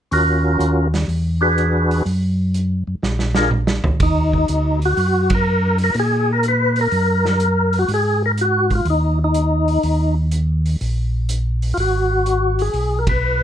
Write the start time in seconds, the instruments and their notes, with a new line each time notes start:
0.11 tonewheel organ D#2 C#4 F4 F#4 A#4, open hi-hat
0.60 tonewheel organ D#2, closed hi-hat
0.94 snare, open hi-hat
1.08 tonewheel organ E2, open hi-hat
1.41 tonewheel organ D4 F#4 G#4 B4
1.58 closed hi-hat
1.91 open hi-hat
2.06 tonewheel organ F#2, open hi-hat
2.54 closed hi-hat
2.87 tonewheel organ F#2
3.03 tonewheel organ A#1, snare
3.19 snare
3.35 tonewheel organ D4 F4 G#4 A#4, snare
3.51 high tom
3.67 snare
3.84 tonewheel organ A#1, floor tom
4.00 tonewheel organ D#2 D#4, kick, ride
4.33 kick
4.48 tonewheel organ D2, closed hi-hat
4.82 tonewheel organ F#4, open hi-hat
4.97 tonewheel organ F#2, open hi-hat
5.30 kick, ride
5.35 tonewheel organ A#4
5.78 open hi-hat
5.84 tonewheel organ A#4
5.94 tonewheel organ A#2, open hi-hat
6.00 tonewheel organ G#4
6.33 tonewheel organ A#4
6.43 closed hi-hat
6.48 tonewheel organ B4
6.76 open hi-hat
6.81 tonewheel organ A#4
6.91 tonewheel organ F#2, open hi-hat
7.25 snare
7.40 closed hi-hat
7.73 open hi-hat
7.79 tonewheel organ F#4
7.88 tonewheel organ G#2, open hi-hat
7.94 tonewheel organ G#4
8.26 tonewheel organ A#4
8.38 tonewheel organ F#4, closed hi-hat
8.70 kick, open hi-hat
8.75 tonewheel organ F4
8.85 tonewheel organ D#2, open hi-hat
8.90 tonewheel organ D#4
9.24 tonewheel organ D#4
9.34 closed hi-hat
9.68 open hi-hat
9.83 tonewheel organ D#2, open hi-hat
10.31 closed hi-hat
10.66 open hi-hat
10.81 tonewheel organ A#1, open hi-hat
11.29 closed hi-hat
11.62 open hi-hat
11.74 tonewheel organ G#1 F4, open hi-hat
12.26 closed hi-hat
12.59 tonewheel organ G#4, open hi-hat
12.73 tonewheel organ B1, open hi-hat
12.99 tonewheel organ A#4
13.07 tonewheel organ B4, kick, ride